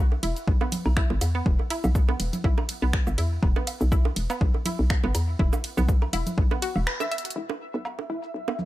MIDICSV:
0, 0, Header, 1, 5, 480
1, 0, Start_track
1, 0, Key_signature, 1, "minor"
1, 0, Tempo, 491803
1, 1424, Time_signature, 4, 2, 24, 8
1, 8443, End_track
2, 0, Start_track
2, 0, Title_t, "Synth texture"
2, 0, Program_c, 0, 99
2, 7186, Note_on_c, 0, 76, 84
2, 8443, Note_off_c, 0, 76, 0
2, 8443, End_track
3, 0, Start_track
3, 0, Title_t, "Synth arpeggio sound"
3, 0, Program_c, 1, 84
3, 224, Note_on_c, 1, 64, 78
3, 294, Note_off_c, 1, 64, 0
3, 596, Note_on_c, 1, 59, 76
3, 634, Note_off_c, 1, 59, 0
3, 944, Note_on_c, 1, 64, 85
3, 1014, Note_off_c, 1, 64, 0
3, 1316, Note_on_c, 1, 59, 80
3, 1354, Note_off_c, 1, 59, 0
3, 1664, Note_on_c, 1, 64, 80
3, 1734, Note_off_c, 1, 64, 0
3, 2036, Note_on_c, 1, 59, 78
3, 2074, Note_off_c, 1, 59, 0
3, 2384, Note_on_c, 1, 64, 85
3, 2454, Note_off_c, 1, 64, 0
3, 2756, Note_on_c, 1, 59, 80
3, 2794, Note_off_c, 1, 59, 0
3, 3103, Note_on_c, 1, 64, 78
3, 3174, Note_off_c, 1, 64, 0
3, 3475, Note_on_c, 1, 59, 77
3, 3514, Note_off_c, 1, 59, 0
3, 3824, Note_on_c, 1, 64, 83
3, 3894, Note_off_c, 1, 64, 0
3, 4196, Note_on_c, 1, 59, 78
3, 4234, Note_off_c, 1, 59, 0
3, 4544, Note_on_c, 1, 64, 76
3, 4614, Note_off_c, 1, 64, 0
3, 4916, Note_on_c, 1, 59, 79
3, 4954, Note_off_c, 1, 59, 0
3, 5265, Note_on_c, 1, 64, 84
3, 5335, Note_off_c, 1, 64, 0
3, 5637, Note_on_c, 1, 59, 78
3, 5674, Note_off_c, 1, 59, 0
3, 5985, Note_on_c, 1, 64, 78
3, 6054, Note_off_c, 1, 64, 0
3, 6357, Note_on_c, 1, 59, 76
3, 6395, Note_off_c, 1, 59, 0
3, 6464, Note_on_c, 1, 66, 103
3, 6534, Note_off_c, 1, 66, 0
3, 6704, Note_on_c, 1, 71, 84
3, 6751, Note_off_c, 1, 71, 0
3, 6836, Note_on_c, 1, 76, 76
3, 6874, Note_off_c, 1, 76, 0
3, 6944, Note_on_c, 1, 76, 80
3, 6991, Note_off_c, 1, 76, 0
3, 7183, Note_on_c, 1, 64, 79
3, 7253, Note_off_c, 1, 64, 0
3, 7555, Note_on_c, 1, 59, 74
3, 7594, Note_off_c, 1, 59, 0
3, 7903, Note_on_c, 1, 64, 74
3, 7974, Note_off_c, 1, 64, 0
3, 8275, Note_on_c, 1, 59, 71
3, 8314, Note_off_c, 1, 59, 0
3, 8443, End_track
4, 0, Start_track
4, 0, Title_t, "FM bass"
4, 0, Program_c, 2, 39
4, 0, Note_on_c, 2, 35, 109
4, 193, Note_off_c, 2, 35, 0
4, 224, Note_on_c, 2, 28, 82
4, 333, Note_off_c, 2, 28, 0
4, 464, Note_on_c, 2, 35, 86
4, 572, Note_off_c, 2, 35, 0
4, 836, Note_on_c, 2, 35, 98
4, 1029, Note_off_c, 2, 35, 0
4, 1076, Note_on_c, 2, 31, 102
4, 1165, Note_off_c, 2, 31, 0
4, 1185, Note_on_c, 2, 40, 84
4, 1386, Note_off_c, 2, 40, 0
4, 1424, Note_on_c, 2, 28, 101
4, 1532, Note_off_c, 2, 28, 0
4, 1797, Note_on_c, 2, 35, 109
4, 2114, Note_off_c, 2, 35, 0
4, 2145, Note_on_c, 2, 28, 81
4, 2253, Note_off_c, 2, 28, 0
4, 2384, Note_on_c, 2, 35, 88
4, 2493, Note_off_c, 2, 35, 0
4, 2756, Note_on_c, 2, 35, 97
4, 2949, Note_off_c, 2, 35, 0
4, 2996, Note_on_c, 2, 31, 100
4, 3085, Note_off_c, 2, 31, 0
4, 3105, Note_on_c, 2, 40, 84
4, 3306, Note_off_c, 2, 40, 0
4, 3344, Note_on_c, 2, 28, 103
4, 3452, Note_off_c, 2, 28, 0
4, 3717, Note_on_c, 2, 35, 110
4, 4034, Note_off_c, 2, 35, 0
4, 4065, Note_on_c, 2, 28, 83
4, 4173, Note_off_c, 2, 28, 0
4, 4305, Note_on_c, 2, 35, 87
4, 4413, Note_off_c, 2, 35, 0
4, 4677, Note_on_c, 2, 35, 97
4, 4869, Note_off_c, 2, 35, 0
4, 4917, Note_on_c, 2, 31, 105
4, 5005, Note_off_c, 2, 31, 0
4, 5024, Note_on_c, 2, 40, 86
4, 5226, Note_off_c, 2, 40, 0
4, 5265, Note_on_c, 2, 28, 104
4, 5373, Note_off_c, 2, 28, 0
4, 5635, Note_on_c, 2, 35, 109
4, 5953, Note_off_c, 2, 35, 0
4, 5984, Note_on_c, 2, 28, 82
4, 6092, Note_off_c, 2, 28, 0
4, 6224, Note_on_c, 2, 35, 85
4, 6332, Note_off_c, 2, 35, 0
4, 6595, Note_on_c, 2, 28, 93
4, 6703, Note_off_c, 2, 28, 0
4, 7183, Note_on_c, 2, 28, 98
4, 7292, Note_off_c, 2, 28, 0
4, 7556, Note_on_c, 2, 35, 107
4, 7873, Note_off_c, 2, 35, 0
4, 7903, Note_on_c, 2, 28, 78
4, 8012, Note_off_c, 2, 28, 0
4, 8143, Note_on_c, 2, 35, 83
4, 8252, Note_off_c, 2, 35, 0
4, 8443, End_track
5, 0, Start_track
5, 0, Title_t, "Drums"
5, 115, Note_on_c, 9, 60, 38
5, 213, Note_off_c, 9, 60, 0
5, 224, Note_on_c, 9, 46, 94
5, 224, Note_on_c, 9, 51, 85
5, 322, Note_off_c, 9, 46, 0
5, 322, Note_off_c, 9, 51, 0
5, 356, Note_on_c, 9, 46, 38
5, 356, Note_on_c, 9, 82, 31
5, 454, Note_off_c, 9, 46, 0
5, 454, Note_off_c, 9, 82, 0
5, 464, Note_on_c, 9, 36, 118
5, 561, Note_off_c, 9, 36, 0
5, 595, Note_on_c, 9, 60, 78
5, 595, Note_on_c, 9, 77, 47
5, 693, Note_off_c, 9, 60, 0
5, 693, Note_off_c, 9, 77, 0
5, 704, Note_on_c, 9, 46, 93
5, 704, Note_on_c, 9, 51, 85
5, 704, Note_on_c, 9, 64, 87
5, 704, Note_on_c, 9, 82, 30
5, 801, Note_off_c, 9, 64, 0
5, 802, Note_off_c, 9, 46, 0
5, 802, Note_off_c, 9, 51, 0
5, 802, Note_off_c, 9, 82, 0
5, 835, Note_on_c, 9, 76, 69
5, 933, Note_off_c, 9, 76, 0
5, 943, Note_on_c, 9, 26, 105
5, 944, Note_on_c, 9, 36, 121
5, 1041, Note_off_c, 9, 26, 0
5, 1042, Note_off_c, 9, 36, 0
5, 1075, Note_on_c, 9, 60, 78
5, 1173, Note_off_c, 9, 60, 0
5, 1183, Note_on_c, 9, 77, 45
5, 1184, Note_on_c, 9, 46, 95
5, 1184, Note_on_c, 9, 51, 85
5, 1184, Note_on_c, 9, 82, 48
5, 1281, Note_off_c, 9, 46, 0
5, 1281, Note_off_c, 9, 51, 0
5, 1281, Note_off_c, 9, 77, 0
5, 1281, Note_off_c, 9, 82, 0
5, 1424, Note_on_c, 9, 36, 117
5, 1522, Note_off_c, 9, 36, 0
5, 1556, Note_on_c, 9, 60, 39
5, 1653, Note_off_c, 9, 60, 0
5, 1663, Note_on_c, 9, 46, 92
5, 1663, Note_on_c, 9, 51, 90
5, 1663, Note_on_c, 9, 76, 68
5, 1761, Note_off_c, 9, 46, 0
5, 1761, Note_off_c, 9, 51, 0
5, 1761, Note_off_c, 9, 76, 0
5, 1795, Note_on_c, 9, 82, 33
5, 1796, Note_on_c, 9, 64, 91
5, 1796, Note_on_c, 9, 77, 46
5, 1893, Note_off_c, 9, 64, 0
5, 1893, Note_off_c, 9, 77, 0
5, 1893, Note_off_c, 9, 82, 0
5, 1904, Note_on_c, 9, 36, 113
5, 1904, Note_on_c, 9, 82, 43
5, 2002, Note_off_c, 9, 36, 0
5, 2002, Note_off_c, 9, 82, 0
5, 2035, Note_on_c, 9, 60, 81
5, 2133, Note_off_c, 9, 60, 0
5, 2144, Note_on_c, 9, 46, 90
5, 2144, Note_on_c, 9, 51, 87
5, 2241, Note_off_c, 9, 46, 0
5, 2241, Note_off_c, 9, 51, 0
5, 2275, Note_on_c, 9, 64, 79
5, 2276, Note_on_c, 9, 46, 37
5, 2276, Note_on_c, 9, 82, 32
5, 2373, Note_off_c, 9, 64, 0
5, 2374, Note_off_c, 9, 46, 0
5, 2374, Note_off_c, 9, 82, 0
5, 2383, Note_on_c, 9, 77, 44
5, 2384, Note_on_c, 9, 36, 117
5, 2481, Note_off_c, 9, 77, 0
5, 2482, Note_off_c, 9, 36, 0
5, 2515, Note_on_c, 9, 60, 80
5, 2515, Note_on_c, 9, 76, 70
5, 2613, Note_off_c, 9, 60, 0
5, 2613, Note_off_c, 9, 76, 0
5, 2624, Note_on_c, 9, 46, 91
5, 2624, Note_on_c, 9, 51, 88
5, 2721, Note_off_c, 9, 46, 0
5, 2721, Note_off_c, 9, 51, 0
5, 2863, Note_on_c, 9, 26, 101
5, 2864, Note_on_c, 9, 36, 119
5, 2961, Note_off_c, 9, 26, 0
5, 2962, Note_off_c, 9, 36, 0
5, 2995, Note_on_c, 9, 60, 42
5, 2995, Note_on_c, 9, 77, 44
5, 2996, Note_on_c, 9, 82, 32
5, 3093, Note_off_c, 9, 60, 0
5, 3093, Note_off_c, 9, 77, 0
5, 3093, Note_off_c, 9, 82, 0
5, 3104, Note_on_c, 9, 46, 90
5, 3104, Note_on_c, 9, 51, 90
5, 3201, Note_off_c, 9, 46, 0
5, 3201, Note_off_c, 9, 51, 0
5, 3343, Note_on_c, 9, 76, 72
5, 3344, Note_on_c, 9, 36, 116
5, 3441, Note_off_c, 9, 76, 0
5, 3442, Note_off_c, 9, 36, 0
5, 3476, Note_on_c, 9, 60, 84
5, 3573, Note_off_c, 9, 60, 0
5, 3584, Note_on_c, 9, 46, 91
5, 3584, Note_on_c, 9, 51, 92
5, 3584, Note_on_c, 9, 77, 44
5, 3681, Note_off_c, 9, 46, 0
5, 3681, Note_off_c, 9, 51, 0
5, 3681, Note_off_c, 9, 77, 0
5, 3715, Note_on_c, 9, 82, 33
5, 3813, Note_off_c, 9, 82, 0
5, 3824, Note_on_c, 9, 36, 112
5, 3824, Note_on_c, 9, 82, 45
5, 3921, Note_off_c, 9, 82, 0
5, 3922, Note_off_c, 9, 36, 0
5, 3955, Note_on_c, 9, 60, 84
5, 4052, Note_off_c, 9, 60, 0
5, 4063, Note_on_c, 9, 46, 87
5, 4063, Note_on_c, 9, 51, 89
5, 4161, Note_off_c, 9, 46, 0
5, 4161, Note_off_c, 9, 51, 0
5, 4196, Note_on_c, 9, 46, 36
5, 4196, Note_on_c, 9, 76, 73
5, 4196, Note_on_c, 9, 77, 44
5, 4196, Note_on_c, 9, 82, 33
5, 4293, Note_off_c, 9, 46, 0
5, 4293, Note_off_c, 9, 76, 0
5, 4293, Note_off_c, 9, 77, 0
5, 4293, Note_off_c, 9, 82, 0
5, 4305, Note_on_c, 9, 36, 115
5, 4402, Note_off_c, 9, 36, 0
5, 4435, Note_on_c, 9, 60, 42
5, 4533, Note_off_c, 9, 60, 0
5, 4543, Note_on_c, 9, 64, 90
5, 4544, Note_on_c, 9, 46, 89
5, 4544, Note_on_c, 9, 51, 89
5, 4544, Note_on_c, 9, 82, 33
5, 4640, Note_off_c, 9, 64, 0
5, 4642, Note_off_c, 9, 46, 0
5, 4642, Note_off_c, 9, 51, 0
5, 4642, Note_off_c, 9, 82, 0
5, 4783, Note_on_c, 9, 26, 106
5, 4783, Note_on_c, 9, 77, 43
5, 4785, Note_on_c, 9, 36, 115
5, 4881, Note_off_c, 9, 26, 0
5, 4881, Note_off_c, 9, 77, 0
5, 4882, Note_off_c, 9, 36, 0
5, 4915, Note_on_c, 9, 60, 84
5, 5012, Note_off_c, 9, 60, 0
5, 5023, Note_on_c, 9, 46, 88
5, 5023, Note_on_c, 9, 51, 89
5, 5023, Note_on_c, 9, 76, 70
5, 5023, Note_on_c, 9, 82, 52
5, 5121, Note_off_c, 9, 46, 0
5, 5121, Note_off_c, 9, 51, 0
5, 5121, Note_off_c, 9, 76, 0
5, 5121, Note_off_c, 9, 82, 0
5, 5265, Note_on_c, 9, 36, 123
5, 5362, Note_off_c, 9, 36, 0
5, 5395, Note_on_c, 9, 60, 86
5, 5395, Note_on_c, 9, 77, 45
5, 5395, Note_on_c, 9, 82, 51
5, 5493, Note_off_c, 9, 60, 0
5, 5493, Note_off_c, 9, 77, 0
5, 5493, Note_off_c, 9, 82, 0
5, 5504, Note_on_c, 9, 46, 91
5, 5504, Note_on_c, 9, 51, 88
5, 5602, Note_off_c, 9, 46, 0
5, 5602, Note_off_c, 9, 51, 0
5, 5635, Note_on_c, 9, 64, 96
5, 5636, Note_on_c, 9, 82, 34
5, 5733, Note_off_c, 9, 64, 0
5, 5734, Note_off_c, 9, 82, 0
5, 5744, Note_on_c, 9, 36, 119
5, 5744, Note_on_c, 9, 82, 46
5, 5842, Note_off_c, 9, 36, 0
5, 5842, Note_off_c, 9, 82, 0
5, 5876, Note_on_c, 9, 60, 44
5, 5876, Note_on_c, 9, 76, 70
5, 5973, Note_off_c, 9, 60, 0
5, 5973, Note_off_c, 9, 76, 0
5, 5984, Note_on_c, 9, 46, 91
5, 5984, Note_on_c, 9, 51, 88
5, 5984, Note_on_c, 9, 77, 44
5, 6081, Note_off_c, 9, 77, 0
5, 6082, Note_off_c, 9, 46, 0
5, 6082, Note_off_c, 9, 51, 0
5, 6115, Note_on_c, 9, 64, 84
5, 6116, Note_on_c, 9, 46, 36
5, 6116, Note_on_c, 9, 82, 34
5, 6213, Note_off_c, 9, 64, 0
5, 6214, Note_off_c, 9, 46, 0
5, 6214, Note_off_c, 9, 82, 0
5, 6224, Note_on_c, 9, 36, 118
5, 6322, Note_off_c, 9, 36, 0
5, 6355, Note_on_c, 9, 60, 86
5, 6453, Note_off_c, 9, 60, 0
5, 6464, Note_on_c, 9, 46, 92
5, 6464, Note_on_c, 9, 51, 89
5, 6562, Note_off_c, 9, 46, 0
5, 6562, Note_off_c, 9, 51, 0
5, 6595, Note_on_c, 9, 77, 45
5, 6692, Note_off_c, 9, 77, 0
5, 6703, Note_on_c, 9, 76, 70
5, 6704, Note_on_c, 9, 26, 111
5, 6801, Note_off_c, 9, 26, 0
5, 6801, Note_off_c, 9, 76, 0
5, 6834, Note_on_c, 9, 60, 87
5, 6836, Note_on_c, 9, 82, 35
5, 6932, Note_off_c, 9, 60, 0
5, 6934, Note_off_c, 9, 82, 0
5, 6944, Note_on_c, 9, 42, 57
5, 7010, Note_off_c, 9, 42, 0
5, 7010, Note_on_c, 9, 42, 66
5, 7076, Note_off_c, 9, 42, 0
5, 7076, Note_on_c, 9, 42, 76
5, 7129, Note_off_c, 9, 42, 0
5, 7129, Note_on_c, 9, 42, 88
5, 7227, Note_off_c, 9, 42, 0
5, 7315, Note_on_c, 9, 60, 78
5, 7413, Note_off_c, 9, 60, 0
5, 7556, Note_on_c, 9, 82, 33
5, 7653, Note_off_c, 9, 82, 0
5, 7663, Note_on_c, 9, 76, 62
5, 7663, Note_on_c, 9, 77, 43
5, 7663, Note_on_c, 9, 82, 42
5, 7760, Note_off_c, 9, 76, 0
5, 7760, Note_off_c, 9, 77, 0
5, 7761, Note_off_c, 9, 82, 0
5, 7795, Note_on_c, 9, 60, 40
5, 7893, Note_off_c, 9, 60, 0
5, 8035, Note_on_c, 9, 82, 31
5, 8133, Note_off_c, 9, 82, 0
5, 8276, Note_on_c, 9, 60, 80
5, 8276, Note_on_c, 9, 77, 43
5, 8373, Note_off_c, 9, 60, 0
5, 8373, Note_off_c, 9, 77, 0
5, 8383, Note_on_c, 9, 64, 91
5, 8384, Note_on_c, 9, 82, 31
5, 8443, Note_off_c, 9, 64, 0
5, 8443, Note_off_c, 9, 82, 0
5, 8443, End_track
0, 0, End_of_file